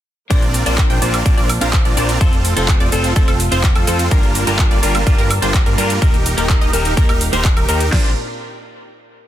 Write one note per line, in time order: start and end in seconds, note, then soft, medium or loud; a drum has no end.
0.30 0.64 A#1 loud
0.30 2.19 A#3 medium
0.30 0.63 C4 medium
0.30 4.08 C4 medium
0.30 0.44 D4 medium
0.30 0.63 D4 medium
0.30 2.19 D4 medium
0.30 0.63 F4 medium
0.30 0.44 F4 medium
0.30 0.63 A#4 medium
0.30 0.44 A#4 medium
0.30 0.44 C5 medium
0.30 0.63 D5 loud
0.30 kick loud
0.30 closed hi-hat medium
0.30 shaker soft
0.42 closed hi-hat soft
0.42 shaker soft
0.54 open hi-hat loud
0.54 shaker medium
0.65 0.88 A#1 medium
0.65 0.78 C4 medium
0.65 0.99 D4 medium
0.65 0.78 D4 medium
0.65 0.99 F4 medium
0.65 0.78 F4 medium
0.65 0.78 A#4 medium
0.65 0.99 A#4 medium
0.65 0.99 C5 loud
0.65 0.78 D5 medium
0.65 closed hi-hat medium
0.65 shaker soft
0.78 kick loud
0.78 clap loud
0.78 closed hi-hat medium
0.78 shaker soft
0.90 1.00 A#1 loud
0.90 0.99 C4 loud
0.90 0.99 D4 medium
0.90 0.99 F4 medium
0.90 0.99 A#4 medium
0.90 0.99 G5 loud
0.90 closed hi-hat soft
0.90 shaker soft
1.01 1.23 A#1 loud
1.01 1.23 C4 medium
1.01 1.22 D4 medium
1.01 1.23 D4 medium
1.01 1.22 F4 medium
1.01 1.23 F4 medium
1.01 1.23 A#4 medium
1.01 1.22 A#4 medium
1.01 1.22 C5 medium
1.01 1.23 D5 medium
1.01 open hi-hat loud
1.01 shaker medium
1.14 closed hi-hat medium
1.14 high woodblock medium
1.14 shaker soft
1.25 1.35 A#1 loud
1.25 1.35 C4 medium
1.25 1.39 D4 medium
1.25 1.35 D4 medium
1.25 1.35 F4 medium
1.25 1.39 F4 medium
1.25 1.35 A#4 medium
1.25 1.39 A#4 medium
1.25 1.40 C5 medium
1.25 1.35 D5 loud
1.25 kick loud
1.25 closed hi-hat medium
1.25 shaker soft
1.37 1.59 A#1 loud
1.37 1.50 C4 loud
1.37 1.50 D4 medium
1.37 1.50 F4 medium
1.37 1.50 A#4 medium
1.37 1.50 D5 loud
1.37 closed hi-hat soft
1.37 shaker soft
1.49 open hi-hat loud
1.49 high woodblock medium
1.49 shaker medium
1.61 1.83 A#1 loud
1.61 1.74 C4 loud
1.61 1.75 D4 loud
1.61 1.74 D4 medium
1.61 1.75 F4 medium
1.61 1.74 F4 medium
1.61 1.74 A#4 loud
1.61 1.75 A#4 medium
1.61 1.75 C5 loud
1.61 1.74 F5 loud
1.61 closed hi-hat medium
1.61 shaker soft
1.73 kick loud
1.73 clap loud
1.73 closed hi-hat medium
1.73 shaker soft
1.85 1.95 A#1 loud
1.85 1.95 C4 medium
1.85 1.95 D4 medium
1.85 1.95 F4 medium
1.85 1.95 A#4 medium
1.85 1.95 D5 medium
1.85 closed hi-hat soft
1.85 shaker soft
1.96 2.19 A#1 medium
1.96 2.18 C4 loud
1.96 2.10 D4 medium
1.96 2.18 D4 medium
1.96 2.11 F4 medium
1.96 2.18 F4 medium
1.96 2.11 A#4 medium
1.96 2.18 A#4 medium
1.96 2.11 C5 medium
1.96 2.18 D5 loud
1.96 open hi-hat loud
1.96 shaker medium
2.09 closed hi-hat medium
2.09 shaker soft
2.20 2.54 F1 loud
2.20 4.09 A3 medium
2.20 2.34 C4 medium
2.20 2.34 F4 medium
2.20 5.98 F4 medium
2.20 2.54 F4 medium
2.20 2.54 A4 loud
2.20 2.35 A4 medium
2.20 2.35 C5 medium
2.20 kick loud
2.20 closed hi-hat medium
2.20 shaker soft
2.33 closed hi-hat soft
2.33 shaker soft
2.45 open hi-hat loud
2.45 shaker medium
2.56 2.78 F1 loud
2.56 2.89 C4 medium
2.56 2.69 C4 medium
2.56 2.89 F4 medium
2.56 2.69 F4 medium
2.56 2.69 A4 medium
2.56 2.90 A4 medium
2.56 2.69 A4 loud
2.56 2.90 C5 loud
2.56 closed hi-hat medium
2.56 shaker soft
2.68 kick loud
2.68 clap loud
2.68 closed hi-hat medium
2.68 shaker soft
2.80 2.90 F1 loud
2.80 2.90 C4 medium
2.80 2.90 F4 medium
2.80 2.89 D5 loud
2.80 2.90 D5 loud
2.80 closed hi-hat soft
2.80 shaker soft
2.92 3.14 F1 loud
2.92 3.12 C4 medium
2.92 3.13 C4 medium
2.92 3.13 F4 medium
2.92 3.12 F4 medium
2.92 3.13 A4 medium
2.92 3.13 C5 medium
2.92 open hi-hat loud
2.92 shaker medium
3.04 closed hi-hat medium
3.04 shaker soft
3.15 3.26 F1 loud
3.15 3.29 C4 medium
3.15 3.25 C4 medium
3.15 3.30 F4 medium
3.15 3.25 F4 medium
3.15 3.25 A4 loud
3.15 3.30 A4 medium
3.15 3.30 C5 medium
3.15 kick loud
3.15 closed hi-hat medium
3.15 shaker soft
3.28 3.49 F1 loud
3.28 3.40 C4 loud
3.28 3.40 F4 medium
3.28 3.40 A4 loud
3.28 closed hi-hat soft
3.28 high woodblock medium
3.28 shaker soft
3.40 open hi-hat loud
3.40 shaker medium
3.51 3.73 F1 loud
3.51 3.65 C4 loud
3.51 3.64 C4 loud
3.51 3.64 F4 loud
3.51 3.65 F4 medium
3.51 3.66 A4 medium
3.51 3.64 C5 loud
3.51 3.66 C5 loud
3.51 closed hi-hat medium
3.51 shaker soft
3.63 kick loud
3.63 clap loud
3.63 closed hi-hat medium
3.63 shaker soft
3.76 3.85 F2 medium
3.76 3.86 C4 medium
3.76 3.86 F4 medium
3.76 3.86 A4 medium
3.76 closed hi-hat soft
3.76 high woodblock medium
3.76 shaker soft
3.87 4.09 F2 loud
3.87 4.01 C4 medium
3.87 4.09 C4 medium
3.87 4.09 F4 medium
3.87 4.01 F4 medium
3.87 4.08 A4 loud
3.87 4.09 A4 loud
3.87 4.01 A4 medium
3.87 4.02 C5 medium
3.87 open hi-hat loud
3.87 shaker medium
3.99 closed hi-hat medium
3.99 shaker soft
4.11 4.45 G1 loud
4.11 6.00 G3 medium
4.11 4.44 G3 medium
4.11 4.44 A#3 medium
4.11 4.25 D4 medium
4.11 6.00 D4 medium
4.11 4.44 D4 medium
4.11 4.44 F4 medium
4.11 4.25 F4 medium
4.11 4.25 G4 medium
4.11 6.00 A#4 medium
4.11 4.44 A#4 loud
4.11 4.25 A#4 medium
4.11 6.00 A5 medium
4.11 kick loud
4.11 closed hi-hat soft
4.11 shaker soft
4.23 closed hi-hat soft
4.23 shaker soft
4.35 open hi-hat loud
4.35 shaker medium
4.46 4.69 G1 loud
4.46 4.59 G3 medium
4.46 4.59 A#3 medium
4.46 4.80 D4 medium
4.46 4.59 D4 medium
4.46 4.59 F4 medium
4.46 4.80 F4 medium
4.46 4.80 G4 medium
4.46 4.59 A#4 medium
4.46 4.59 A#4 loud
4.46 4.80 A#4 loud
4.46 closed hi-hat medium
4.46 shaker soft
4.59 kick loud
4.59 clap loud
4.59 closed hi-hat medium
4.59 shaker soft
4.71 4.80 G1 loud
4.71 4.80 G3 loud
4.71 4.80 A#3 medium
4.71 4.80 D4 medium
4.71 4.80 F4 medium
4.71 4.80 D5 loud
4.71 closed hi-hat soft
4.71 shaker soft
4.82 5.04 G1 loud
4.82 5.04 G3 medium
4.82 5.04 A#3 medium
4.82 5.03 D4 medium
4.82 5.04 D4 medium
4.82 5.03 F4 medium
4.82 5.04 F4 medium
4.82 5.03 G4 medium
4.82 5.04 A#4 medium
4.82 5.03 A#4 medium
4.82 open hi-hat loud
4.82 shaker medium
4.95 closed hi-hat medium
4.95 high woodblock medium
4.95 shaker soft
5.06 5.16 G1 loud
5.06 5.16 G3 medium
5.06 5.16 A#3 medium
5.06 5.20 D4 medium
5.06 5.16 D4 medium
5.06 5.20 F4 medium
5.06 5.16 F4 medium
5.06 5.20 G4 medium
5.06 5.16 A#4 loud
5.06 5.21 A#4 medium
5.06 kick loud
5.06 closed hi-hat medium
5.06 shaker soft
5.18 5.40 G1 loud
5.18 5.31 G3 loud
5.18 5.31 A#3 medium
5.18 5.31 D4 medium
5.18 5.31 F4 medium
5.18 5.31 A#4 loud
5.18 closed hi-hat soft
5.18 shaker soft
5.31 open hi-hat loud
5.31 high woodblock medium
5.31 shaker medium
5.42 5.64 G1 medium
5.42 5.55 G3 loud
5.42 5.55 A#3 medium
5.42 5.56 D4 loud
5.42 5.55 D4 medium
5.42 5.55 F4 loud
5.42 5.56 F4 medium
5.42 5.56 G4 loud
5.42 5.56 A#4 loud
5.42 5.55 C5 loud
5.42 closed hi-hat medium
5.42 shaker soft
5.54 kick loud
5.54 clap loud
5.54 closed hi-hat medium
5.54 shaker soft
5.66 5.76 G2 loud
5.66 5.76 G3 medium
5.66 5.76 A#3 medium
5.66 5.76 D4 medium
5.66 5.76 F4 medium
5.66 5.76 A#4 medium
5.66 closed hi-hat soft
5.66 shaker soft
5.77 6.00 G2 loud
5.77 5.99 G3 medium
5.77 5.99 A#3 medium
5.77 5.91 D4 medium
5.77 5.99 D4 medium
5.77 5.92 F4 medium
5.77 5.99 F4 medium
5.77 5.92 G4 medium
5.77 5.99 A#4 loud
5.77 5.92 A#4 loud
5.77 open hi-hat loud
5.77 shaker medium
5.90 closed hi-hat medium
5.90 shaker soft
6.01 6.35 D#1 loud
6.01 6.15 A#3 medium
6.01 7.90 A#3 medium
6.01 6.35 D#4 medium
6.01 7.90 D#4 medium
6.01 6.15 D#4 medium
6.01 6.35 G4 medium
6.01 7.90 G4 medium
6.01 6.16 G4 medium
6.01 6.35 A#4 medium
6.01 6.35 A#4 loud
6.01 6.16 A#4 medium
6.01 kick loud
6.01 closed hi-hat soft
6.01 shaker soft
6.14 closed hi-hat soft
6.14 shaker soft
6.26 open hi-hat loud
6.26 shaker medium
6.37 6.59 D#1 loud
6.37 6.70 A#3 medium
6.37 6.70 D#4 medium
6.37 6.50 D#4 medium
6.37 6.50 G4 medium
6.37 6.71 G4 medium
6.37 6.50 A#4 medium
6.37 6.71 A#4 loud
6.37 closed hi-hat medium
6.37 shaker soft
6.49 kick loud
6.49 clap loud
6.49 closed hi-hat soft
6.49 shaker soft
6.61 6.71 D#1 loud
6.61 6.70 D#4 medium
6.61 6.70 G4 medium
6.61 6.70 D#5 loud
6.61 closed hi-hat soft
6.61 shaker soft
6.73 6.95 D#1 loud
6.73 6.93 A#3 medium
6.73 6.93 D#4 medium
6.73 6.94 D#4 medium
6.73 6.94 G4 medium
6.73 6.94 A#4 medium
6.73 open hi-hat loud
6.73 shaker medium
6.85 closed hi-hat medium
6.85 shaker soft
6.97 7.07 D#1 loud
6.97 7.10 A#3 medium
6.97 7.06 D#4 medium
6.97 7.11 D#4 medium
6.97 7.06 G4 medium
6.97 7.11 G4 medium
6.97 7.06 A#4 loud
6.97 7.11 A#4 medium
6.97 kick loud
6.97 closed hi-hat medium
6.97 shaker soft
7.09 7.30 D#1 loud
7.09 7.21 D#4 loud
7.09 7.21 G4 medium
7.09 7.21 A#4 loud
7.09 closed hi-hat soft
7.09 high woodblock medium
7.09 shaker soft
7.21 open hi-hat loud
7.21 shaker medium
7.32 7.54 D#1 loud
7.32 7.46 A#3 loud
7.32 7.45 D#4 loud
7.32 7.46 D#4 medium
7.32 7.45 G4 loud
7.32 7.47 G4 medium
7.32 7.47 A#4 loud
7.32 7.45 C5 loud
7.32 closed hi-hat medium
7.32 shaker soft
7.45 kick loud
7.45 clap loud
7.45 closed hi-hat medium
7.45 shaker soft
7.57 7.66 D#1 loud
7.57 7.67 D#4 medium
7.57 7.67 G4 medium
7.57 7.67 A#4 medium
7.57 closed hi-hat soft
7.57 high woodblock medium
7.57 shaker soft
7.68 7.90 D#2 loud
7.68 7.82 A#3 medium
7.68 7.82 D#4 medium
7.68 7.90 D#4 loud
7.68 7.90 G4 medium
7.68 7.82 G4 medium
7.68 7.90 A#4 loud
7.68 7.83 A#4 medium
7.68 open hi-hat loud
7.68 shaker medium
7.80 closed hi-hat medium
7.80 shaker soft
7.90 8.15 A#1 loud
7.90 8.15 A#2 medium
7.90 8.15 A#3 medium
7.90 8.10 C4 medium
7.90 8.15 C4 medium
7.90 8.09 D4 medium
7.90 8.10 D4 medium
7.90 8.15 D4 medium
7.90 8.10 F4 medium
7.90 8.15 F4 medium
7.90 8.10 A#4 medium
7.90 8.11 C5 medium
7.90 8.10 D5 medium
7.90 kick loud
7.90 snare loud
7.90 crash medium